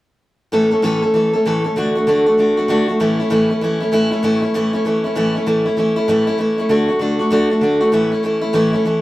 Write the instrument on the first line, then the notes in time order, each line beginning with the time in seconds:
steel-string acoustic guitar
0.52 A2 E3 A3 C#4 A4
0.71 A3 C#4 A4
0.82 A2 E3 A3 C#4 A4
1.02 A3 C#4 A4
1.14 E3 A3 C#4 A4
1.33 A3 C#4 A4
1.45 A2 E3 A3 C#4 A4
1.64 A3 C#4 A4
1.76 D3 A3 D4 F#4
1.95 A3 D4 F#4
2.07 D3 A3 D4 F#4
2.26 A3 D4 F#4
2.38 D3 A3 D4 F#4
2.57 A3 D4 F#4
2.68 D3 A3 D4 F#4
2.88 A3 D4 F#4
3.00 A2 E3 A3 C#4 E4
3.20 A3 C#4 E4
3.30 A2 E3 A3 C#4 E4
3.50 A3 C#4 E4
3.61 E3 A3 C#4 E4
3.80 A3 C#4 E4
3.92 A2 E3 A3 C#4 E4
4.11 A3 C#4 E4
4.23 A2 E3 A3 C#4 E4
4.42 A3 C#4 E4
4.54 A2 E3 A3 C#4 E4
4.73 A3 C#4 E4
4.85 E3 A3 C#4 E4
5.04 A3 C#4 E4
5.15 A2 E3 A3 C#4 E4
5.35 A3 C#4 E4
5.46 A2 E3 A3 C#4 E4
5.66 A3 C#4 E4
5.77 E3 A3 C#4 E4
5.96 A3 C#4 E4
6.08 A2 E3 A3 C#4 E4
6.27 A3 C#4 E4
6.38 E3 A3 C#4 E4
6.58 A3 C#4 E4
6.69 D3 A3 D4 F#4
6.88 A3 D4 F#4
6.99 D3 A3 D4 F#4
7.19 A3 D4 F#4
7.31 D3 A3 D4 F#4
7.50 A3 D4 F#4
7.61 D3 A3 D4 F#4
7.81 A3 D4 F#4
7.92 A2 E3 A3 C#4 E4
8.12 A3 C#4 E4
8.23 E3 A3 C#4 E4
8.41 A3 C#4 E4
8.53 A2 E3 A3 C#4 E4
8.73 A3 C#4 E4
8.85 E3 A3 C#4 E4